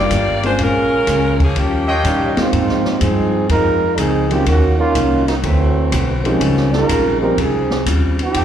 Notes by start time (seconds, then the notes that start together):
Already playing: A#3 F4 G4 D5
0.10 G1 D#3 G3 D4 F4, kick, hi-hat pedal, ride
0.43 G#3 A#3 C4 C#4 D4 F4 C5, ride
0.58 A#1 A#2 G#3 C#4 F4, kick, ride
0.63 F4 A#4
1.07 C#2 A#2 G#3 C#4 F4, kick, hi-hat pedal, ride
1.40 F3 A#3 C#4 G#4, kick, ride
1.56 D#2 D#3 G3 A#3 C#4 F4 G4, kick, ride
1.60 F3
1.88 F4 C#5 D#5 G5
2.03 A#2 D#3 G3 A#3 C#4 D#4 F4, kick, hi-hat pedal, ride
2.37 G#3 A#3 C4 D#4 F4, muted upright bass stroke, snare, ride
2.53 G#2 F3 C4 D#4, kick, ride
2.69 snare
2.85 snare
3.00 G2 G#2 F3 C4 D#4 G#4, kick, hi-hat pedal, ride
3.49 F2 G#2 F3 G#3 C4 D#4 F4 A#4, kick, ride
3.97 C#2 G#2 F3 C4 D#4 G#4, kick, hi-hat pedal, ride
4.30 D#3 F#3 G#3 A#3 C4 C#4 D#4 F4 G4, ride
4.45 D#2 D#3 A#3 C#4 F#4, kick, ride
4.50 F#4
4.77 A#3 C#4 D#4 F4
4.95 C2 D#3 F#3 A#3 C#4 D#4 F4 F#4, kick, hi-hat pedal, ride
5.26 F#3 A#3 C#4 D#4, snare, ride
5.42 D2 D3 E3 F#3 A3 C4 F#4 B4, kick, ride
5.92 B1 D3 C4 F#4 B4, kick, hi-hat pedal, ride
6.15 C4
6.24 D#3 F3 G#3 C4 C#4 D#4 G4, ride
6.41 C#2 C#3 G3 C4 F4, kick, ride
6.57 snare
6.72 G#3 D#4 F4 A#4, snare
6.89 A#1 C#3 G3 C4 F4, kick, hi-hat pedal, ride
7.21 F3 G3 G#3 C4 D#4 G4 A#4
7.37 C2 C#3 F3 G3 C4 D#4 F4 G#4, kick, ride
7.71 snare
7.86 D#2 C#3 G3 C4 F4, kick, hi-hat pedal, ride
8.19 F3 C4 D#4 G4, ride
8.34 F2 F3 C4 D#4 A4, kick, ride